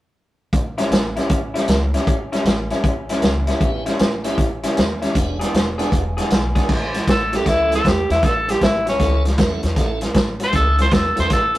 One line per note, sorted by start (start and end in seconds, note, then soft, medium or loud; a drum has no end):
0.53 0.78 A1 medium
0.53 kick medium
0.53 closed hi-hat medium
0.78 0.99 A2 medium
0.78 0.99 G3 medium
0.78 0.99 C#4 medium
0.78 0.99 E4 medium
0.78 snare soft
0.78 closed hi-hat medium
0.90 1.16 A1 medium
0.90 snare medium
0.90 closed hi-hat medium
1.16 1.38 A2 medium
1.16 1.38 G3 medium
1.16 1.38 C#4 medium
1.16 1.37 E4 medium
1.16 snare soft
1.16 closed hi-hat soft
1.29 1.56 A1 medium
1.29 kick medium
1.29 closed hi-hat medium
1.54 1.76 A2 medium
1.54 1.76 G3 medium
1.54 1.76 C#4 medium
1.54 1.76 E4 medium
1.54 snare soft
1.54 closed hi-hat soft
1.68 1.94 C#2 medium
1.68 snare medium
1.68 closed hi-hat medium
1.94 2.15 A2 medium
1.94 2.15 G3 medium
1.94 2.15 C#4 medium
1.94 2.15 E4 medium
1.94 snare soft
1.94 closed hi-hat medium
2.07 2.33 A1 medium
2.07 kick loud
2.07 closed hi-hat medium
2.32 2.54 A2 medium
2.32 2.53 G3 medium
2.32 2.53 C#4 medium
2.32 2.53 E4 medium
2.32 snare soft
2.32 closed hi-hat medium
2.45 2.71 A1 medium
2.45 snare medium
2.45 closed hi-hat medium
2.70 2.92 A2 medium
2.70 2.92 G3 medium
2.70 2.92 C#4 medium
2.70 2.92 E4 medium
2.70 snare soft
2.70 closed hi-hat medium
2.84 3.09 A1 medium
2.84 kick medium
2.84 closed hi-hat medium
3.09 3.31 A2 medium
3.09 3.31 G3 medium
3.09 3.31 C#4 medium
3.09 3.30 E4 medium
3.09 snare soft
3.09 closed hi-hat medium
3.22 3.48 C#2 medium
3.22 snare medium
3.22 closed hi-hat medium
3.47 3.69 A2 medium
3.47 3.69 G3 medium
3.47 3.69 C#4 medium
3.47 3.68 E4 medium
3.47 snare soft
3.47 closed hi-hat medium
3.60 3.86 A1 medium
3.60 3.83 B3 soft
3.60 3.83 C#4 soft
3.60 3.83 E4 soft
3.60 3.84 G4 medium
3.60 kick medium
3.60 closed hi-hat medium
3.86 4.08 A2 medium
3.86 4.07 G3 medium
3.86 4.07 C#4 medium
3.86 4.07 E4 medium
3.86 snare soft
3.86 closed hi-hat soft
3.99 4.26 A1 medium
3.99 snare medium
3.99 closed hi-hat medium
4.24 4.46 A2 medium
4.24 4.46 G3 medium
4.24 4.36 B3 medium
4.24 4.36 C#4 soft
4.24 4.46 C#4 medium
4.24 4.46 E4 medium
4.24 4.37 E4 medium
4.24 4.37 G4 medium
4.24 snare soft
4.24 closed hi-hat medium
4.38 4.64 A1 medium
4.38 kick medium
4.38 closed hi-hat medium
4.63 4.85 A2 medium
4.63 4.85 G3 medium
4.63 4.85 C#4 medium
4.63 4.84 E4 medium
4.63 snare soft
4.63 closed hi-hat medium
4.77 5.03 D#2 medium
4.77 snare medium
4.77 closed hi-hat medium
5.02 5.16 A2 medium
5.02 5.16 G3 medium
5.02 5.15 C#4 medium
5.02 5.15 E4 medium
5.02 snare soft
5.02 closed hi-hat medium
5.14 5.41 E1 medium
5.14 5.37 B3 soft
5.14 5.37 D4 soft
5.14 5.38 F#4 soft
5.14 5.38 G#4 medium
5.14 kick medium
5.14 closed hi-hat medium
5.39 5.62 E3 medium
5.39 5.61 B3 medium
5.39 5.61 D4 medium
5.39 5.61 G#4 medium
5.39 snare soft
5.39 closed hi-hat medium
5.54 5.79 E1 medium
5.54 snare medium
5.54 closed hi-hat medium
5.78 6.00 E3 medium
5.78 5.91 B3 medium
5.78 6.00 B3 medium
5.78 5.91 D4 soft
5.78 6.00 D4 medium
5.78 5.92 F#4 soft
5.78 5.99 G#4 medium
5.78 5.91 G#4 soft
5.78 snare soft
5.78 closed hi-hat medium
5.92 6.18 E1 medium
5.92 kick medium
5.92 closed hi-hat medium
6.17 6.39 E3 medium
6.17 6.39 B3 medium
6.17 6.38 D4 medium
6.17 6.38 G#4 medium
6.17 snare soft
6.17 closed hi-hat soft
6.30 6.57 B1 medium
6.30 snare medium
6.30 closed hi-hat medium
6.55 6.68 E3 medium
6.55 6.69 B3 medium
6.55 6.69 D4 medium
6.55 6.69 G#4 medium
6.55 kick medium
6.55 snare soft
6.55 closed hi-hat medium
6.69 7.01 A1 medium
6.69 6.91 A2 medium
6.69 6.92 E3 medium
6.69 kick medium
6.69 snare soft
6.69 crash medium
6.94 7.06 A2 medium
6.94 7.07 E3 medium
6.94 snare soft
6.94 closed hi-hat soft
7.07 7.40 A1 medium
7.07 7.30 A2 medium
7.07 7.30 F#3 medium
7.07 7.37 A4 medium
7.07 kick medium
7.07 snare loud
7.07 closed hi-hat medium
7.32 7.45 A2 medium
7.32 7.45 F#3 medium
7.32 7.82 A3 medium
7.32 7.82 C#4 medium
7.32 7.82 E4 medium
7.32 7.50 G4 medium
7.32 7.83 A4 medium
7.32 snare soft
7.32 closed hi-hat medium
7.46 7.78 C#2 medium
7.46 7.69 A2 medium
7.46 7.69 E3 medium
7.46 7.71 E4 medium
7.46 kick medium
7.46 snare soft
7.46 closed hi-hat medium
7.71 7.83 A2 medium
7.71 7.83 E3 medium
7.71 snare soft
7.71 closed hi-hat medium
7.75 7.89 A4 medium
7.85 8.06 E2 medium
7.85 8.07 A2 medium
7.85 8.07 F#3 medium
7.85 8.10 G4 medium
7.85 kick medium
7.85 snare medium
7.85 closed hi-hat medium
8.09 8.21 E2 medium
8.09 8.21 A2 medium
8.09 8.22 F#3 medium
8.09 8.26 E4 medium
8.09 snare soft
8.09 closed hi-hat medium
8.22 8.55 A1 medium
8.22 8.45 A2 medium
8.22 8.45 E3 medium
8.22 8.52 A4 medium
8.22 kick medium
8.22 snare soft
8.22 closed hi-hat medium
8.47 8.59 A2 medium
8.47 8.60 E3 medium
8.47 8.62 G4 medium
8.47 snare soft
8.47 closed hi-hat medium
8.60 8.94 A1 medium
8.60 8.84 A2 medium
8.60 8.84 F#3 medium
8.60 8.87 E4 medium
8.60 kick medium
8.60 snare loud
8.60 closed hi-hat medium
8.86 8.99 A2 medium
8.86 8.99 F#3 medium
8.86 9.25 C#4 medium
8.86 snare soft
8.86 closed hi-hat soft
9.00 9.32 C#2 medium
9.00 9.23 A2 medium
9.00 9.23 E3 medium
9.00 9.23 A3 soft
9.00 9.23 C#4 soft
9.00 9.23 E4 soft
9.00 9.24 A4 soft
9.00 kick medium
9.00 snare soft
9.00 closed hi-hat medium
9.25 9.37 A2 medium
9.25 9.37 E3 medium
9.25 snare soft
9.25 closed hi-hat soft
9.38 9.61 A2 medium
9.38 9.61 F#3 medium
9.38 9.61 A3 medium
9.38 9.61 C#4 soft
9.38 9.61 E4 soft
9.38 9.62 F#4 medium
9.38 kick medium
9.38 snare medium
9.38 closed hi-hat medium
9.63 9.75 E2 medium
9.63 9.75 A2 medium
9.63 9.76 F#3 medium
9.63 snare soft
9.63 closed hi-hat medium
9.76 10.09 A1 medium
9.76 9.99 A2 medium
9.76 10.00 E3 medium
9.76 10.00 A3 medium
9.76 10.00 C#4 soft
9.76 10.00 E4 soft
9.76 10.01 A4 medium
9.76 kick medium
9.76 snare soft
9.76 closed hi-hat medium
10.01 10.13 A2 medium
10.01 10.14 E3 medium
10.01 snare soft
10.01 closed hi-hat medium
10.14 10.47 A1 medium
10.14 10.38 A2 medium
10.14 10.38 F#3 medium
10.14 kick medium
10.14 snare loud
10.14 closed hi-hat medium
10.40 10.52 A2 medium
10.40 10.53 F#3 medium
10.40 10.55 C5 loud
10.40 snare soft
10.40 closed hi-hat medium
10.52 10.86 C#2 medium
10.52 10.76 A2 medium
10.52 10.76 E3 medium
10.52 10.75 A3 medium
10.52 10.76 C#4 medium
10.52 10.76 E4 soft
10.52 10.76 G#4 medium
10.52 10.79 A4 medium
10.52 kick medium
10.52 snare soft
10.52 closed hi-hat medium
10.78 10.90 A2 medium
10.78 10.91 E3 medium
10.78 10.95 C5 medium
10.78 snare soft
10.78 closed hi-hat soft
10.91 11.15 A2 medium
10.91 11.15 F#3 medium
10.91 11.17 A4 medium
10.91 kick medium
10.91 snare loud
10.91 closed hi-hat medium
11.15 11.29 E2 medium
11.15 11.28 A2 medium
11.15 11.29 F#3 medium
11.15 11.29 A3 medium
11.15 11.29 C#4 medium
11.15 11.29 E4 medium
11.15 11.30 B4 medium
11.15 snare soft
11.15 closed hi-hat medium
11.20 11.32 C5 medium
11.30 11.58 A1 medium
11.30 11.53 A2 medium
11.30 11.53 E3 medium
11.30 11.56 A4 medium
11.30 kick medium
11.30 snare soft
11.30 closed hi-hat medium
11.55 11.58 A2 medium
11.55 closed hi-hat medium